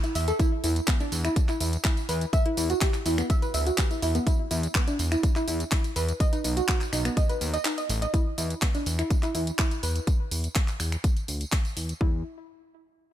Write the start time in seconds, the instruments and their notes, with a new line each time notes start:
0.04 synth pluck E4, closed hi-hat, tambourine
0.15 analog synth bass E2, synth pluck E5, open hi-hat, tambourine
0.28 synth pluck A4, closed hi-hat, tambourine
0.39 synth pluck E4, kick, closed hi-hat, tambourine
0.64 analog synth bass E2, synth pluck E4, open hi-hat, tambourine
0.76 closed hi-hat, tambourine
0.88 synth pluck B3, kick, clap, closed hi-hat, tambourine
1.00 synth pluck D4, closed hi-hat, tambourine
1.12 analog synth bass E2, open hi-hat, tambourine
1.25 synth pluck E4, finger snap, closed hi-hat, tambourine
1.36 kick, closed hi-hat, tambourine
1.48 synth pluck E4, clap, closed hi-hat, tambourine
1.60 analog synth bass E2, synth pluck E4, open hi-hat, tambourine
1.73 closed hi-hat, tambourine
1.84 synth pluck E4, kick, clap, closed hi-hat, tambourine
1.97 closed hi-hat, tambourine
2.09 analog synth bass E2, synth pluck B4, open hi-hat, tambourine
2.21 closed hi-hat, tambourine
2.33 synth pluck E5, kick, closed hi-hat, tambourine
2.46 synth pluck E4, closed hi-hat
2.57 analog synth bass E2, synth pluck E4, open hi-hat, tambourine
2.70 synth pluck F#4, closed hi-hat, tambourine
2.81 synth pluck G4, kick, clap, closed hi-hat, tambourine
2.94 clap, closed hi-hat, tambourine
3.06 analog synth bass E2, synth pluck E4, open hi-hat, tambourine
3.18 synth pluck B3, finger snap, closed hi-hat, tambourine
3.30 synth pluck E5, kick, closed hi-hat, tambourine
3.42 synth pluck B4, closed hi-hat, tambourine
3.54 analog synth bass D2, synth pluck E5, open hi-hat, tambourine
3.67 synth pluck F#4, closed hi-hat, tambourine
3.78 synth pluck G4, kick, clap, closed hi-hat, tambourine
3.91 synth pluck E4, closed hi-hat, tambourine
4.02 analog synth bass E2, synth pluck E4, open hi-hat, tambourine
4.15 synth pluck B3, closed hi-hat, tambourine
4.27 synth pluck E4, kick, closed hi-hat, tambourine
4.51 analog synth bass E2, synth pluck E4, open hi-hat, tambourine
4.63 closed hi-hat, tambourine
4.75 synth pluck B3, kick, clap, closed hi-hat, tambourine
4.88 synth pluck D4, closed hi-hat, tambourine
4.99 analog synth bass E2, open hi-hat, tambourine
5.12 synth pluck E4, finger snap, closed hi-hat, tambourine
5.23 kick, closed hi-hat, tambourine
5.36 synth pluck E4, clap, closed hi-hat, tambourine
5.48 analog synth bass E2, synth pluck E4, open hi-hat, tambourine
5.60 closed hi-hat, tambourine
5.72 synth pluck E4, kick, clap, closed hi-hat, tambourine
5.84 closed hi-hat, tambourine
5.96 analog synth bass E2, synth pluck B4, open hi-hat, tambourine
6.09 closed hi-hat, tambourine
6.20 synth pluck D#5, kick, closed hi-hat, tambourine
6.33 synth pluck D#4, closed hi-hat, tambourine
6.44 analog synth bass B1, synth pluck D#4, open hi-hat, tambourine
6.57 synth pluck F#4, closed hi-hat, tambourine
6.68 synth pluck F#4, kick, clap, closed hi-hat, tambourine
6.81 clap, closed hi-hat, tambourine
6.93 analog synth bass B1, synth pluck D#4, finger snap, open hi-hat, tambourine
7.05 synth pluck B3, finger snap, closed hi-hat, tambourine
7.17 synth pluck D#5, kick, closed hi-hat, tambourine
7.29 synth pluck B4, closed hi-hat, tambourine
7.41 analog synth bass D#2, open hi-hat, tambourine
7.54 synth pluck D#5, closed hi-hat, tambourine
7.65 synth pluck D#4, clap, closed hi-hat, tambourine
7.78 synth pluck D#5, closed hi-hat, tambourine
7.89 analog synth bass A1, open hi-hat, tambourine
8.02 synth pluck D#5, closed hi-hat, tambourine
8.14 synth pluck E4, kick, closed hi-hat, tambourine
8.38 analog synth bass E2, synth pluck E4, open hi-hat, tambourine
8.50 closed hi-hat, tambourine
8.62 synth pluck B3, kick, clap, closed hi-hat, tambourine
8.75 synth pluck D4, closed hi-hat, tambourine
8.86 analog synth bass E2, open hi-hat, tambourine
8.99 synth pluck E4, finger snap, closed hi-hat, tambourine
9.10 kick, closed hi-hat, tambourine
9.23 synth pluck E4, clap, closed hi-hat, tambourine
9.35 analog synth bass E2, synth pluck E4, open hi-hat, tambourine
9.47 closed hi-hat, tambourine
9.59 synth pluck E4, kick, clap, closed hi-hat, tambourine
9.71 closed hi-hat, tambourine
9.83 analog synth bass E2, synth pluck B4, open hi-hat, tambourine
9.96 closed hi-hat, tambourine
10.07 kick, closed hi-hat, tambourine
10.31 analog synth bass E2, open hi-hat, tambourine
10.44 closed hi-hat, tambourine
10.55 kick, clap, closed hi-hat, tambourine
10.68 clap, closed hi-hat, tambourine
10.80 analog synth bass E2, finger snap, open hi-hat, tambourine
10.92 finger snap, closed hi-hat, tambourine
11.04 kick, closed hi-hat, tambourine
11.17 closed hi-hat, tambourine
11.28 analog synth bass D2, open hi-hat, tambourine
11.41 closed hi-hat, tambourine
11.52 kick, clap, closed hi-hat, tambourine
11.65 closed hi-hat, tambourine
11.77 analog synth bass E2, open hi-hat, tambourine
11.89 closed hi-hat, tambourine
12.01 analog synth bass E2, synth pluck E4, kick